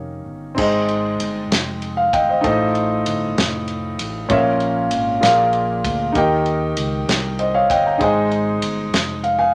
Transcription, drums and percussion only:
0.58 kick loud
0.58 crash medium
0.89 ride soft
1.20 ride medium
1.52 snare loud
1.52 ride medium
1.82 ride soft
2.13 kick medium
2.13 ride medium
2.44 kick medium
2.44 ride medium
2.75 ride soft
3.06 ride medium
3.38 snare loud
3.38 ride medium
3.68 ride soft
3.99 ride medium
4.30 kick loud
4.30 ride medium
4.60 ride soft
4.91 ride medium
5.23 snare loud
5.23 ride medium
5.53 ride soft
5.84 kick medium
5.84 ride medium
6.15 kick medium
6.15 ride medium
6.46 ride soft
6.77 ride medium
7.09 snare loud
7.09 ride medium
7.39 ride soft
7.70 kick medium
7.70 ride medium
8.01 kick loud
8.01 ride medium
8.31 ride soft
8.62 ride medium
8.94 snare loud
8.94 ride medium
9.24 ride soft

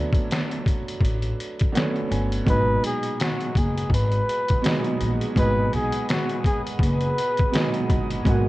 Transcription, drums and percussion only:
0.12 kick loud
0.12 closed hi-hat soft
0.31 finger snap medium
0.31 snare loud
0.31 closed hi-hat medium
0.51 closed hi-hat soft
0.66 kick medium
0.66 closed hi-hat medium
0.88 closed hi-hat soft
1.01 kick medium
1.05 closed hi-hat medium
1.22 closed hi-hat soft
1.40 closed hi-hat medium
1.60 kick medium
1.60 closed hi-hat medium
1.75 finger snap medium
1.75 snare loud
1.75 closed hi-hat medium
1.96 closed hi-hat soft
2.12 closed hi-hat medium
2.32 closed hi-hat soft
2.47 kick loud
2.47 closed hi-hat medium
2.84 closed hi-hat medium
3.03 closed hi-hat soft
3.20 finger snap medium
3.20 snare loud
3.20 closed hi-hat medium
3.41 closed hi-hat soft
3.55 kick medium
3.55 closed hi-hat medium
3.77 closed hi-hat soft
3.90 kick medium
3.94 closed hi-hat medium
4.12 closed hi-hat soft
4.29 closed hi-hat medium
4.49 kick medium
4.49 closed hi-hat soft
4.64 finger snap medium
4.64 snare loud
4.64 closed hi-hat medium
4.85 closed hi-hat soft
5.01 closed hi-hat medium
5.21 closed hi-hat soft
5.36 kick loud
5.36 closed hi-hat medium
5.73 closed hi-hat medium
5.92 closed hi-hat soft
6.09 finger snap medium
6.09 snare loud
6.09 closed hi-hat medium
6.30 closed hi-hat soft
6.44 kick medium
6.44 closed hi-hat medium
6.67 closed hi-hat soft
6.79 kick medium
6.79 closed hi-hat medium
7.00 closed hi-hat soft
7.18 closed hi-hat medium
7.37 kick medium
7.37 closed hi-hat soft
7.53 finger snap medium
7.53 snare loud
7.53 closed hi-hat medium
7.74 closed hi-hat soft
7.90 kick medium
7.90 closed hi-hat medium
8.10 closed hi-hat soft
8.25 kick loud
8.25 closed hi-hat medium

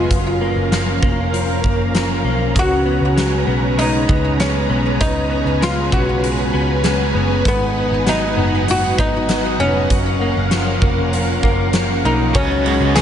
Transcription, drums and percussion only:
0.11 kick medium
0.11 closed hi-hat medium
0.72 snare medium
0.72 closed hi-hat medium
1.03 kick medium
1.34 closed hi-hat medium
1.64 kick medium
1.95 snare medium
1.95 closed hi-hat medium
2.56 kick medium
2.56 closed hi-hat medium
3.18 snare medium
3.18 closed hi-hat medium
3.79 closed hi-hat medium
4.09 kick medium
4.40 snare medium
4.40 closed hi-hat medium
5.01 kick medium
5.01 closed hi-hat medium
5.62 snare medium
5.62 closed hi-hat medium
5.92 kick medium
6.24 closed hi-hat medium
6.84 snare medium
6.84 closed hi-hat medium
7.45 kick medium
7.45 closed hi-hat medium
8.07 snare medium
8.07 closed hi-hat medium
8.68 closed hi-hat medium
8.98 kick medium
9.29 snare medium
9.29 closed hi-hat medium
9.90 kick medium
9.90 closed hi-hat medium
10.51 snare medium
10.51 closed hi-hat medium
10.82 kick medium
11.13 closed hi-hat medium
11.43 kick medium
11.73 snare loud
11.73 closed hi-hat medium
12.34 kick loud
12.34 ride medium
12.66 ride soft
12.96 snare loud
12.96 ride medium
12.96 tambourine medium

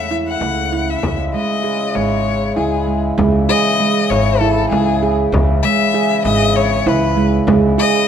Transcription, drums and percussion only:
0.41 frame drum soft
0.72 frame drum soft
1.03 frame drum medium
1.95 frame drum soft
2.57 frame drum soft
3.19 frame drum medium
4.12 frame drum soft
4.72 frame drum soft
5.03 frame drum soft
5.34 frame drum medium
6.25 frame drum medium
6.87 frame drum medium
7.18 frame drum soft
7.48 frame drum medium

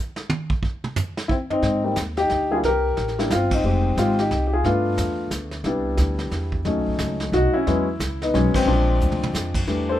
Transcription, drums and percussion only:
0.16 snare soft
0.30 high tom loud
0.50 kick medium
0.63 kick medium
0.84 mid tom medium
0.96 floor tom loud
0.96 hi-hat pedal medium
1.17 snare medium
1.29 kick medium
1.50 floor tom soft
1.62 brush sweep soft
1.62 snare soft
1.96 snare medium
1.96 hi-hat pedal medium
2.17 snare soft
2.30 snare soft
2.63 brush sweep soft
2.63 snare soft
2.97 snare soft
3.08 snare soft
3.19 snare soft
3.30 snare medium
3.30 hi-hat pedal medium
3.51 kick medium
3.51 crash medium
3.64 brush sweep soft
3.98 snare medium
3.98 hi-hat pedal soft
4.19 snare soft
4.31 snare soft
4.64 brush sweep soft
4.64 snare soft
4.98 snare medium
4.98 hi-hat pedal medium
5.31 snare medium
5.31 hi-hat pedal medium
5.51 snare soft
5.64 brush sweep soft
5.64 snare soft
5.97 snare medium
5.97 hi-hat pedal medium
6.19 snare soft
6.31 snare soft
6.52 kick medium
6.65 brush sweep soft
6.65 snare soft
6.99 snare medium
6.99 hi-hat pedal soft
7.20 snare soft
7.33 snare soft
7.67 brush sweep soft
7.67 snare soft
8.00 snare medium
8.00 hi-hat pedal medium
8.22 snare soft
8.35 snare soft
8.54 kick medium
8.54 crash medium
8.68 brush sweep soft
9.01 hi-hat pedal medium
9.12 mid tom medium
9.23 mid tom medium
9.35 snare medium
9.35 hi-hat pedal medium
9.54 kick medium
9.54 crash medium
9.67 brush sweep soft
9.67 snare soft

